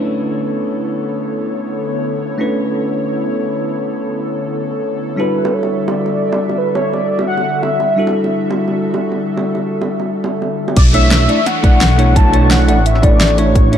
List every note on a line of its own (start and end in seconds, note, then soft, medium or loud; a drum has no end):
0.00 10.73 D3 medium
0.00 2.37 A3 medium
0.00 5.15 B3 medium
0.00 2.37 C#4 medium
0.00 2.38 D4 medium
0.00 2.38 E4 medium
0.00 5.14 E4 medium
0.00 10.73 A4 medium
0.00 2.38 B4 medium
0.00 5.14 C#5 medium
2.38 5.16 A3 medium
2.38 5.16 C#4 medium
2.38 5.16 D4 medium
2.38 5.17 E4 medium
2.38 5.17 B4 medium
5.16 7.95 G3 medium
5.16 10.73 G3 medium
5.16 7.95 D4 medium
5.16 7.95 E4 medium
5.16 10.73 F#4 medium
5.16 7.96 F#4 medium
5.16 7.96 A4 medium
5.16 5.55 B4 medium
5.16 10.73 E5 medium
5.16 high bongo soft
5.45 high bongo medium
5.54 5.90 C#5 medium
5.63 high bongo soft
5.88 6.60 D5 medium
5.88 high bongo medium
6.06 high bongo soft
6.32 high bongo medium
6.49 high bongo soft
6.58 6.74 B4 loud
6.75 6.95 C#5 medium
6.75 high bongo medium
6.93 7.27 D5 loud
6.93 high bongo soft
7.19 high bongo medium
7.28 7.64 F#5 loud
7.37 high bongo soft
7.62 8.15 E5 loud
7.62 high bongo medium
7.80 high bongo soft
7.96 10.74 G3 medium
7.96 10.74 D4 medium
7.96 10.75 E4 medium
7.96 10.75 F#4 medium
7.96 10.76 A4 medium
8.07 high bongo medium
8.24 high bongo soft
8.50 high bongo medium
8.68 high bongo soft
8.94 high bongo medium
9.12 high bongo soft
9.37 high bongo medium
9.55 high bongo soft
9.81 high bongo medium
10.00 high bongo soft
10.24 high bongo medium
10.42 high bongo soft
10.68 high bongo medium
10.76 11.28 B1 loud
10.76 13.78 E3 medium
10.76 13.78 D4 medium
10.76 13.78 A4 medium
10.76 10.85 D5 medium
10.76 13.78 C#6 medium
10.76 kick loud
10.76 closed hi-hat medium
10.76 crash loud
10.76 downlifter medium
10.93 11.26 A3 medium
10.93 11.27 D4 medium
10.93 11.27 E4 medium
10.93 11.27 C#5 medium
10.93 11.48 E5 loud
10.93 closed hi-hat medium
11.11 snare loud
11.11 closed hi-hat loud
11.28 11.38 A3 medium
11.28 11.38 D4 medium
11.28 11.38 E4 medium
11.28 11.39 D5 loud
11.28 closed hi-hat medium
11.46 12.18 F#5 loud
11.46 snare medium
11.46 closed hi-hat loud
11.63 12.70 B1 loud
11.63 11.78 A3 medium
11.63 11.78 D4 medium
11.63 11.78 E4 medium
11.63 11.78 D5 loud
11.63 kick loud
11.63 closed hi-hat medium
11.81 snare loud
11.81 closed hi-hat medium
11.97 12.31 A3 loud
11.97 12.31 D4 medium
11.97 12.32 E4 medium
11.97 12.32 C#5 loud
11.97 closed hi-hat medium
12.16 12.53 A5 loud
12.16 kick loud
12.16 closed hi-hat medium
12.33 12.66 A3 medium
12.33 12.66 D4 medium
12.33 12.67 E4 medium
12.33 12.67 C#5 medium
12.33 closed hi-hat medium
12.51 12.88 F#5 loud
12.51 snare loud
12.51 closed hi-hat medium
12.67 13.78 A1 medium
12.67 12.77 A3 medium
12.67 12.78 D4 medium
12.67 12.78 E4 medium
12.67 12.78 D5 loud
12.67 closed hi-hat medium
12.86 13.05 E5 loud
12.86 closed hi-hat medium
12.95 snare soft
13.02 13.17 A3 medium
13.02 13.17 D4 medium
13.02 13.18 E4 medium
13.02 13.40 D5 loud
13.02 13.18 D5 loud
13.02 kick loud
13.02 closed hi-hat medium
13.21 snare loud
13.21 closed hi-hat medium
13.30 snare soft
13.37 13.71 A3 loud
13.37 13.71 D4 medium
13.37 13.71 E4 medium
13.37 13.78 C#5 medium
13.37 13.71 C#5 loud
13.37 closed hi-hat medium
13.55 kick loud
13.55 closed hi-hat medium
13.72 13.78 A3 medium
13.72 13.78 D4 medium
13.72 13.78 E4 medium
13.72 13.78 C#5 medium
13.72 closed hi-hat medium